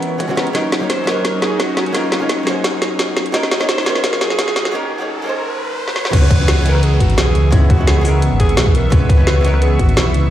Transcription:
Already playing: hollow-body jazz guitar E3 G#3 B3 C#4 A#4, analog synth pad B3 E4 C#5
0.02 closed hi-hat
0.18 hollow-body jazz guitar E3 G#3 C#4 F#4, kick, closed hi-hat
0.27 hollow-body jazz guitar E3 G#3 C#4 F#4, cross-stick
0.36 hollow-body jazz guitar E3 G#3 B3 C#4 A#4, snare, closed hi-hat
0.47 closed hi-hat
0.53 hollow-body jazz guitar F#3 A#3 C#4 D#4 A#4, analog synth pad F#3 C#4 D#4, alto saxophone D#4, kick, snare, closed hi-hat, riser
0.72 snare, closed hi-hat
0.80 hollow-body jazz guitar F#3 A#3 C#4 D#4 C#5
0.90 alto saxophone C5, kick, snare, closed hi-hat
1.04 hollow-body jazz guitar F#3 A#3 C#4, alto saxophone A#4, snare, closed hi-hat
1.09 hollow-body jazz guitar D#4 C5
1.25 kick, snare, closed hi-hat
1.42 alto saxophone G#4, snare, closed hi-hat
1.60 alto saxophone F#4, kick, snare, closed hi-hat
1.77 snare, closed hi-hat
1.86 closed hi-hat
1.92 hollow-body jazz guitar F#3 A#3 C#4 D#4 A#4, alto saxophone F4, kick, snare, closed hi-hat
2.12 snare, closed hi-hat
2.19 hollow-body jazz guitar F#3 A#3 C#4 D#4 C#5
2.29 alto saxophone C#4, kick, snare, closed hi-hat
2.43 hollow-body jazz guitar F#3 A#3 C#4, snare, closed hi-hat
2.48 hollow-body jazz guitar D#4 C5
2.64 kick, snare, closed hi-hat
2.82 snare, closed hi-hat
2.99 kick, snare, closed hi-hat
3.17 snare, closed hi-hat
3.26 closed hi-hat
3.32 hollow-body jazz guitar F#3 A#3 C#4 D#4 A#4, alto saxophone D#4, kick, snare, closed hi-hat
3.43 snare
3.51 snare, closed hi-hat
3.59 hollow-body jazz guitar F#3 A#3 C#4 D#4 C#5, snare
3.69 alto saxophone C5, kick, snare, closed hi-hat
3.78 snare
3.83 hollow-body jazz guitar F#3 A#3 C#4, alto saxophone A#4, snare, closed hi-hat
3.88 hollow-body jazz guitar D#4 C5
3.95 snare
4.04 kick, snare, closed hi-hat
4.13 snare
4.21 alto saxophone G#4, snare, closed hi-hat
4.30 snare
4.39 kick, snare, closed hi-hat
4.48 snare
4.56 snare, closed hi-hat
4.65 snare, closed hi-hat
4.72 hollow-body jazz guitar F#3 A#3 C#4 D#4 A#4
4.98 hollow-body jazz guitar F#3 A#3 C#4 D#4 C#5
5.22 hollow-body jazz guitar F#3 A#3 C#4
5.27 hollow-body jazz guitar D#4 C5
5.88 snare
5.96 snare
6.05 snare
6.11 detuned saw bass C#2, hollow-body jazz guitar E3 G#3 B3 C#4 G#4, analog synth pad B3 E5 C#6, alto saxophone B4, kick, closed hi-hat, crash, downlifter
6.31 kick, closed hi-hat
6.38 hollow-body jazz guitar E3 G#3 B3 C#4 B4
6.48 snare, closed hi-hat
6.62 hollow-body jazz guitar E3 G#3 B3, closed hi-hat
6.67 hollow-body jazz guitar C#4 A#4
6.75 cross-stick
6.83 alto saxophone G#4, closed hi-hat
7.00 detuned saw bass G#1, alto saxophone F#4, kick, closed hi-hat
7.10 closed hi-hat
7.18 detuned saw bass B1, alto saxophone G#4, snare, closed hi-hat
7.35 detuned saw bass C#2, closed hi-hat
7.51 hollow-body jazz guitar E3 G#3 B3 C#4 G#4, alto saxophone E4, kick, closed hi-hat
7.70 alto saxophone F#4, kick, closed hi-hat
7.77 hollow-body jazz guitar E3 G#3 B3 C#4 B4
7.87 alto saxophone G#4, snare, closed hi-hat
7.97 cross-stick
8.01 hollow-body jazz guitar E3 G#3 B3, open hi-hat
8.06 hollow-body jazz guitar C#4 A#4
8.22 closed hi-hat
8.32 detuned saw bass G#1
8.40 alto saxophone G#4, kick, closed hi-hat
8.49 closed hi-hat
8.57 detuned saw bass B1, snare, closed hi-hat
8.66 kick
8.75 alto saxophone A#4, closed hi-hat
8.90 detuned saw bass C#2, hollow-body jazz guitar E3 G#3 B3 C#4 G#4, alto saxophone B4, kick, closed hi-hat
9.09 kick, closed hi-hat
9.17 hollow-body jazz guitar E3 G#3 B3 C#4 B4
9.27 snare, closed hi-hat
9.41 hollow-body jazz guitar E3 G#3 B3, closed hi-hat
9.46 hollow-body jazz guitar C#4 A#4
9.54 cross-stick
9.62 alto saxophone G#4, closed hi-hat
9.79 detuned saw bass G#1, alto saxophone F#4, kick, closed hi-hat
9.89 closed hi-hat
9.97 detuned saw bass B1, alto saxophone E4, snare, closed hi-hat
10.14 detuned saw bass C#2, closed hi-hat

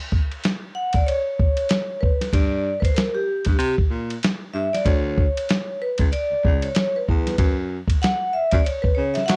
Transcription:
0.12 kick
0.32 ride
0.44 snare, hi-hat pedal, ride
0.75 vibraphone F#5
0.93 vibraphone D5, kick, ride
1.07 vibraphone C#5, ride
1.39 kick
1.57 ride
1.69 snare, hi-hat pedal, ride
2.01 vibraphone B4, kick
2.21 snare, ride
2.33 baritone saxophone G2, vibraphone D5, kick, ride
2.80 vibraphone B4 C5, kick
2.85 ride
2.95 vibraphone A#4, snare, hi-hat pedal, ride
3.15 vibraphone G4
3.45 baritone saxophone G2, kick, ride
3.59 baritone saxophone C3, ride
3.78 baritone saxophone A#2, kick
3.90 baritone saxophone A#2
4.10 ride
4.23 snare, hi-hat pedal, ride
4.54 baritone saxophone G2, vibraphone E5
4.73 vibraphone D5, snare, ride
4.85 baritone saxophone D2, vibraphone C#5, kick, ride
5.17 kick
5.37 ride
5.49 snare, hi-hat pedal, ride
5.82 vibraphone B4
5.98 baritone saxophone C#2, kick, ride
6.12 vibraphone D5, ride
6.31 baritone saxophone C#2
6.45 baritone saxophone C#2, kick
6.62 vibraphone C#5, ride
6.75 vibraphone C#5, snare, hi-hat pedal, ride
6.96 vibraphone B4
7.08 baritone saxophone E2, kick
7.27 snare, ride
7.38 baritone saxophone F#2, kick, ride
7.88 kick, ride
8.02 vibraphone F#5, snare, hi-hat pedal, ride
8.33 vibraphone E5
8.51 baritone saxophone F#2, vibraphone D5, kick, ride
8.65 vibraphone C#5, ride
8.82 baritone saxophone C#3, vibraphone B4, kick
8.95 baritone saxophone C#3, vibraphone C#5
9.14 vibraphone E5, snare, ride
9.26 baritone saxophone F#3, vibraphone F#5, snare, hi-hat pedal, ride

